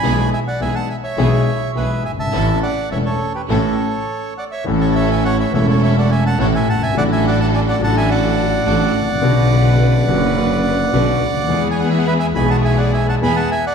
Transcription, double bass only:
X:1
M:4/4
L:1/8
Q:1/4=105
K:Amix
V:1 name="Double bass" clef=bass
B,,, z B,,, z B,,, z B,,, G,,, | A,,, z E,,, z A,,, z3 | [K:A] A,,,3 E,,,3 A,,, =G,,, | A,,,3 A,,,3 A,,, A,,, |
B,,,3 F,,,3 B,,, D,, | E,,3 B,,,3 E,, z |]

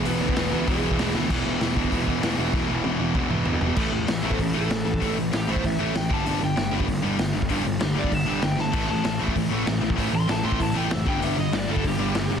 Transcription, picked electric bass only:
X:1
M:4/4
L:1/8
Q:1/4=194
K:Emix
V:1 name="Picked electric bass" clef=bass
E,,, D,, E,,, D,, E,,, E,,, E,,, D,, | E,,, E,,, E,,, D,, E,,, E,,, E,,, E,,, | E,,, E,,, E,,, E,,, E,,, E,,, D,, E,,, | [K:Glyd] A,,, A,,, A,,, A,,, A,,, A,,, A,,, A,,, |
A,,, A,,, A,,, A,,, A,,, A,,, A,,, G,,, | G,,, G,,, G,,, G,,, G,,, G,,, G,,, G,,, | G,,, G,,, G,,, G,,, G,,, G,,, G,,, G,,, | A,,, A,,, A,,, A,,, A,,, A,,, A,,, A,,, |
A,,, A,,, A,,, A,,, A,,, A,,, F,,, G,,, | G,,, G,,, G,,, G,,, G,,, G,,, G,,, G,,, |]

